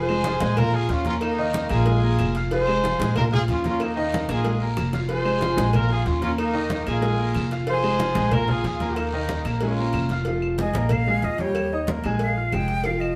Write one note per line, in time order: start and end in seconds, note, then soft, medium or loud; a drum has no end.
0.00 0.35 F1 medium
0.00 0.54 G#4 medium
0.00 0.54 C5 loud
0.09 0.23 G#3 medium
0.09 0.23 G#4 medium
0.09 0.23 G#5 medium
0.09 high conga soft
0.09 claves medium
0.24 0.39 F3 medium
0.24 0.39 F4 medium
0.24 0.39 F5 medium
0.24 cowbell medium
0.24 high conga loud
0.24 short guiro medium
0.40 0.86 A#1 loud
0.40 0.54 G#3 medium
0.40 0.55 G#4 medium
0.40 0.55 G#5 medium
0.40 cowbell medium
0.40 high conga loud
0.40 short guiro medium
0.57 0.70 A#3 medium
0.57 0.73 F4 medium
0.57 0.70 A#4 medium
0.57 0.74 A#4 loud
0.57 0.70 A#5 medium
0.57 cowbell loud
0.57 high conga soft
0.57 low conga medium
0.57 long guiro medium
0.57 claves medium
0.73 1.00 F4 medium
0.73 0.90 F4 medium
0.73 0.90 G#4 loud
0.73 1.00 F5 medium
0.73 1.00 F6 medium
0.73 high conga soft
0.89 1.65 D#2 medium
0.89 1.06 C#4 medium
0.89 1.06 F4 medium
0.89 cowbell medium
0.89 high conga medium
0.89 short guiro medium
1.05 1.32 A#3 medium
1.05 1.14 C#4 medium
1.05 1.14 F4 loud
1.05 1.32 A#4 medium
1.05 1.32 A#5 medium
1.05 cowbell medium
1.05 high conga medium
1.05 short guiro medium
1.21 1.67 A#3 medium
1.21 1.67 D#4 loud
1.21 cowbell loud
1.21 high conga soft
1.21 long guiro medium
1.21 claves medium
1.38 1.65 D#3 medium
1.38 1.65 D#4 medium
1.38 1.65 D#5 medium
1.38 high conga soft
1.53 cowbell medium
1.53 high conga loud
1.53 short guiro medium
1.69 2.16 A#1 loud
1.69 1.83 A#3 medium
1.69 2.35 F4 medium
1.69 2.35 G#4 loud
1.69 1.83 A#4 medium
1.69 1.84 A#5 medium
1.69 cowbell medium
1.69 high conga soft
1.69 short guiro medium
1.69 claves medium
1.86 1.99 G#3 medium
1.86 2.00 G#4 medium
1.86 2.00 G#5 medium
1.86 cowbell loud
1.86 long guiro medium
2.03 2.29 A#3 medium
2.03 2.29 A#4 medium
2.03 2.30 A#5 medium
2.03 high conga soft
2.18 2.94 F1 medium
2.18 cowbell medium
2.18 high conga medium
2.18 short guiro medium
2.18 claves medium
2.35 2.49 F4 medium
2.35 2.49 F5 medium
2.35 2.49 F6 medium
2.35 cowbell medium
2.35 short guiro medium
2.51 2.65 F3 medium
2.51 2.65 F4 medium
2.51 3.13 G#4 medium
2.51 3.12 C5 loud
2.51 2.65 F5 medium
2.51 cowbell loud
2.51 high conga soft
2.51 long guiro medium
2.67 2.81 G#3 medium
2.67 2.81 G#4 medium
2.67 2.82 G#5 medium
2.67 high conga soft
2.67 claves medium
2.83 2.97 F3 medium
2.83 2.97 F4 medium
2.83 2.97 F5 loud
2.83 cowbell medium
2.83 high conga loud
2.83 short guiro medium
3.00 3.45 A#1 loud
3.00 3.13 G#3 medium
3.00 3.13 G#4 medium
3.00 3.14 G#5 medium
3.00 cowbell medium
3.00 high conga loud
3.00 short guiro medium
3.15 3.28 A#3 medium
3.15 3.24 F4 medium
3.15 3.29 A#4 medium
3.15 3.24 A#4 loud
3.15 3.29 A#5 medium
3.15 cowbell loud
3.15 high conga soft
3.15 low conga medium
3.15 long guiro medium
3.15 claves medium
3.31 3.58 F4 medium
3.31 3.41 F4 medium
3.31 3.40 G#4 loud
3.31 3.58 F5 medium
3.31 3.58 F6 medium
3.31 high conga soft
3.31 low conga medium
3.48 4.23 D#2 medium
3.48 3.65 C#4 medium
3.48 3.64 F4 medium
3.48 cowbell medium
3.48 high conga medium
3.48 short guiro medium
3.64 3.91 A#3 medium
3.64 3.81 C#4 medium
3.64 3.81 F4 loud
3.64 3.91 A#4 medium
3.64 3.91 A#5 medium
3.64 cowbell medium
3.64 high conga medium
3.64 short guiro medium
3.80 4.30 D#4 medium
3.80 cowbell loud
3.80 high conga soft
3.80 long guiro medium
3.80 claves medium
3.84 4.31 A#3 medium
3.96 4.23 D#3 medium
3.96 4.23 D#4 medium
3.96 4.23 D#5 loud
3.96 high conga soft
4.12 cowbell medium
4.12 high conga loud
4.12 short guiro medium
4.29 4.74 A#1 loud
4.29 4.42 A#3 medium
4.29 4.66 F4 medium
4.29 4.65 G#4 medium
4.29 4.42 A#4 medium
4.29 4.43 A#5 medium
4.29 cowbell medium
4.29 high bongo medium
4.29 high conga soft
4.29 short guiro medium
4.29 claves medium
4.45 4.58 G#3 medium
4.45 4.58 G#4 medium
4.45 4.59 G#5 medium
4.45 cowbell loud
4.45 high conga soft
4.45 long guiro medium
4.61 4.88 A#3 medium
4.61 4.88 A#4 medium
4.61 4.88 A#5 medium
4.61 high conga soft
4.77 5.52 F1 medium
4.77 cowbell medium
4.77 low bongo loud
4.77 high conga medium
4.77 short guiro medium
4.77 claves medium
4.93 5.07 F4 medium
4.93 5.07 F5 medium
4.93 5.07 F6 medium
4.93 cowbell medium
4.93 low bongo medium
4.93 high conga medium
4.93 short guiro medium
5.09 5.23 F3 medium
5.09 5.23 F4 medium
5.09 5.71 G#4 medium
5.09 5.70 C5 loud
5.09 5.23 F5 medium
5.09 cowbell loud
5.09 high conga soft
5.09 long guiro medium
5.25 5.38 G#3 medium
5.25 5.39 G#4 medium
5.25 5.39 G#5 medium
5.25 high conga soft
5.25 claves medium
5.40 5.54 F3 medium
5.40 5.54 F4 medium
5.40 5.54 F5 medium
5.40 cowbell medium
5.40 high conga loud
5.40 short guiro medium
5.56 6.03 A#1 loud
5.56 5.70 G#3 medium
5.56 5.70 G#4 medium
5.56 5.70 G#5 medium
5.56 cowbell medium
5.56 high conga loud
5.56 short guiro medium
5.73 5.87 A#3 medium
5.73 5.91 F4 medium
5.73 5.87 A#4 medium
5.73 5.91 A#4 loud
5.73 5.87 A#5 medium
5.73 cowbell loud
5.73 high conga soft
5.73 low conga medium
5.73 long guiro medium
5.73 claves medium
5.89 6.16 F4 medium
5.89 6.06 F4 medium
5.89 6.06 G#4 loud
5.89 6.16 F5 medium
5.89 6.17 F6 medium
5.89 high conga soft
6.06 6.81 D#2 medium
6.06 6.23 C#4 medium
6.06 6.22 F4 loud
6.06 cowbell medium
6.06 high conga medium
6.06 short guiro medium
6.22 6.48 A#3 medium
6.22 6.31 C#4 medium
6.22 6.31 F4 loud
6.22 6.48 A#4 medium
6.22 6.49 A#5 medium
6.22 cowbell medium
6.22 high conga medium
6.22 short guiro medium
6.38 6.85 A#3 medium
6.38 6.84 D#4 loud
6.38 cowbell loud
6.38 high conga soft
6.38 long guiro medium
6.38 claves medium
6.54 6.81 D#3 medium
6.54 6.81 D#4 loud
6.54 6.81 D#5 medium
6.54 high conga soft
6.70 cowbell medium
6.70 high conga loud
6.70 short guiro medium
6.86 7.32 A#1 loud
6.86 6.99 A#3 medium
6.86 7.48 F4 medium
6.86 7.48 G#4 loud
6.86 7.00 A#4 medium
6.86 7.00 A#5 medium
6.86 cowbell medium
6.86 high conga soft
6.86 short guiro medium
6.86 claves medium
7.02 7.15 G#3 medium
7.02 7.16 G#4 medium
7.02 7.16 G#5 medium
7.02 cowbell loud
7.02 high conga soft
7.02 long guiro medium
7.18 7.45 A#3 medium
7.18 7.45 A#4 medium
7.18 7.45 A#5 medium
7.18 high conga soft
7.34 8.10 F1 medium
7.34 cowbell medium
7.34 high conga medium
7.34 short guiro medium
7.34 claves medium
7.51 7.65 F4 medium
7.51 7.65 F5 medium
7.51 7.65 F6 medium
7.51 cowbell medium
7.51 short guiro medium
7.67 7.81 F3 medium
7.67 7.81 F4 medium
7.67 8.29 G#4 medium
7.67 8.29 C5 loud
7.67 7.81 F5 medium
7.67 cowbell loud
7.67 high conga soft
7.67 long guiro medium
7.84 7.97 G#3 medium
7.84 7.97 G#4 medium
7.84 7.97 G#5 medium
7.84 high conga soft
7.84 claves medium
7.99 8.13 F3 medium
7.99 8.13 F4 loud
7.99 8.13 F5 medium
7.99 cowbell medium
7.99 high conga loud
7.99 short guiro medium
8.15 8.61 A#1 loud
8.15 8.29 G#3 medium
8.15 8.29 G#4 medium
8.15 8.30 G#5 medium
8.15 cowbell medium
8.15 high conga loud
8.15 short guiro medium
8.31 8.46 A#3 medium
8.31 8.48 F4 medium
8.31 8.46 A#4 medium
8.31 8.49 A#4 loud
8.31 8.46 A#5 medium
8.31 cowbell loud
8.31 high conga soft
8.31 low conga loud
8.31 claves medium
8.48 8.75 F4 medium
8.48 8.65 F4 medium
8.48 8.65 G#4 loud
8.48 8.75 F5 medium
8.48 8.75 F6 medium
8.48 high conga soft
8.48 low conga medium
8.64 9.40 D#2 medium
8.64 8.96 F4 medium
8.64 8.96 G#4 medium
8.64 cowbell medium
8.64 high conga medium
8.64 short guiro medium
8.80 9.07 A#3 medium
8.80 9.07 A#4 medium
8.80 9.07 A#5 medium
8.80 cowbell medium
8.80 high conga medium
8.80 short guiro medium
8.96 9.43 A#3 medium
8.96 9.46 D#4 medium
8.96 cowbell loud
8.96 high conga soft
8.96 long guiro medium
8.96 claves medium
9.13 9.39 D#3 medium
9.13 9.40 D#4 medium
9.13 9.40 D#5 medium
9.13 high conga soft
9.29 cowbell medium
9.29 high conga loud
9.29 short guiro medium
9.45 9.90 A#1 loud
9.45 9.59 A#3 medium
9.45 9.59 A#4 medium
9.45 9.59 A#5 medium
9.45 cowbell medium
9.45 high conga soft
9.45 short guiro medium
9.45 claves medium
9.61 9.75 G#3 medium
9.61 10.07 C#4 medium
9.61 10.08 F4 medium
9.61 9.75 G#4 medium
9.61 9.75 G#5 medium
9.61 cowbell loud
9.61 high conga soft
9.61 long guiro medium
9.78 10.05 A#3 medium
9.78 10.05 A#4 medium
9.78 10.05 A#5 medium
9.78 high conga soft
9.93 10.69 F1 medium
9.93 cowbell medium
9.93 high conga medium
9.93 short guiro medium
9.93 claves medium
10.09 10.24 F4 medium
10.09 10.24 F5 medium
10.09 10.24 F6 medium
10.09 cowbell medium
10.09 high conga medium
10.09 short guiro medium
10.25 10.53 F3 medium
10.25 10.53 F4 medium
10.25 10.54 F5 medium
10.25 cowbell loud
10.25 high conga soft
10.42 high conga soft
10.42 claves medium
10.58 10.73 G#3 medium
10.58 10.73 G#4 medium
10.58 10.94 D#5 medium
10.58 10.73 G#5 medium
10.58 cowbell medium
10.58 high conga loud
10.74 11.19 A#1 medium
10.74 11.02 A#3 medium
10.74 11.02 A#4 medium
10.74 11.02 A#5 medium
10.74 cowbell medium
10.74 high conga loud
10.89 11.26 F5 loud
10.89 cowbell loud
10.89 high conga soft
10.89 low conga medium
10.89 claves medium
11.07 11.21 G#3 medium
11.07 11.21 G#4 medium
11.07 11.21 G#5 medium
11.07 high conga soft
11.22 11.98 D#2 medium
11.22 11.36 F4 medium
11.22 11.42 D#5 medium
11.22 11.37 F5 medium
11.22 11.37 F6 medium
11.22 cowbell medium
11.22 high conga medium
11.38 11.66 G3 medium
11.38 11.67 G4 medium
11.38 11.89 C#5 medium
11.38 11.67 G5 medium
11.38 cowbell medium
11.38 high conga medium
11.55 cowbell loud
11.55 high conga soft
11.55 claves medium
11.73 11.86 D#4 medium
11.73 11.86 D#5 medium
11.73 11.86 D#6 medium
11.73 high conga soft
11.87 12.02 A#3 medium
11.87 12.02 A#4 medium
11.87 12.02 A#5 medium
11.87 cowbell medium
11.87 high conga loud
12.04 12.50 A#1 medium
12.04 12.31 G#3 medium
12.04 12.31 G#4 medium
12.04 12.32 G#5 medium
12.04 cowbell medium
12.04 high conga soft
12.04 claves medium
12.19 12.55 F5 medium
12.19 cowbell loud
12.19 high conga soft
12.37 12.50 F4 medium
12.37 12.50 F5 medium
12.37 12.50 F6 medium
12.37 high conga soft
12.52 13.15 F1 medium
12.52 12.80 G#3 medium
12.52 12.80 G#4 medium
12.52 12.80 F5 medium
12.52 12.87 G5 loud
12.52 cowbell medium
12.52 high conga medium
12.52 claves medium
12.68 cowbell medium
12.84 13.12 F3 medium
12.84 13.12 F4 medium
12.84 13.12 F5 medium
12.84 13.02 F5 medium
12.84 cowbell loud
12.84 high conga soft
13.00 13.15 D#5 medium
13.00 high conga soft
13.00 claves medium